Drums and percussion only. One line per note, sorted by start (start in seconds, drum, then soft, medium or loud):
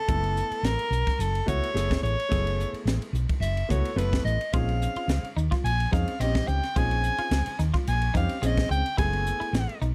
0.08 kick medium
0.08 hi-hat pedal medium
0.08 ride medium
0.24 ride medium
0.37 hi-hat pedal medium
0.52 ride medium
0.64 snare loud
0.64 hi-hat pedal medium
0.64 ride medium
0.79 ride medium
0.92 hi-hat pedal medium
1.07 kick medium
1.07 snare soft
1.07 ride medium
1.20 hi-hat pedal medium
1.20 ride medium
1.35 ride medium
1.48 kick medium
1.48 hi-hat pedal medium
1.63 ride medium
1.77 hi-hat pedal medium
1.77 ride medium
1.91 kick medium
1.91 snare medium
1.91 ride medium
2.05 hi-hat pedal medium
2.20 ride medium
2.32 kick medium
2.32 hi-hat pedal medium
2.32 ride medium
2.47 ride medium
2.60 hi-hat pedal medium
2.74 ride medium
2.87 snare loud
2.87 hi-hat pedal medium
2.87 ride medium
3.02 ride medium
3.15 hi-hat pedal medium
3.29 kick medium
3.29 ride medium
3.42 hi-hat pedal medium
3.42 ride medium
3.57 ride medium
3.70 kick medium
3.70 hi-hat pedal medium
3.85 ride medium
3.98 hi-hat pedal medium
3.98 ride medium
4.13 kick medium
4.13 snare loud
4.13 ride medium
4.26 hi-hat pedal medium
4.41 ride medium
4.53 kick loud
4.53 hi-hat pedal medium
4.53 ride medium
4.69 ride medium
4.82 hi-hat pedal medium
4.96 ride medium
5.09 snare loud
5.09 hi-hat pedal medium
5.09 ride medium
5.24 ride medium
5.37 hi-hat pedal medium
5.52 kick medium
5.52 snare soft
5.52 ride medium
5.66 hi-hat pedal medium
5.66 ride medium
5.80 ride medium
5.93 kick medium
5.93 snare soft
5.93 hi-hat pedal medium
6.08 ride medium
6.21 hi-hat pedal medium
6.21 ride medium
6.35 kick medium
6.35 snare loud
6.35 ride medium
6.48 hi-hat pedal medium
6.63 snare soft
6.63 ride medium
6.76 kick medium
6.76 hi-hat pedal medium
6.76 ride medium
6.91 ride medium
7.03 hi-hat pedal medium
7.18 ride medium
7.31 snare loud
7.31 hi-hat pedal medium
7.31 ride medium
7.46 ride medium
7.59 snare soft
7.59 hi-hat pedal medium
7.74 kick medium
7.74 snare soft
7.74 ride medium
7.87 hi-hat pedal medium
7.87 ride medium
8.02 ride medium
8.15 kick medium
8.15 snare soft
8.15 hi-hat pedal medium
8.29 ride medium
8.43 hi-hat pedal medium
8.43 ride medium
8.57 kick medium
8.57 snare loud
8.57 ride medium
8.71 hi-hat pedal medium
8.86 ride medium
8.98 kick loud
8.98 hi-hat pedal medium
8.98 ride medium
9.13 ride medium
9.26 hi-hat pedal medium
9.41 ride medium
9.54 snare loud
9.54 hi-hat pedal medium
9.54 ride medium
9.69 ride medium
9.82 hi-hat pedal medium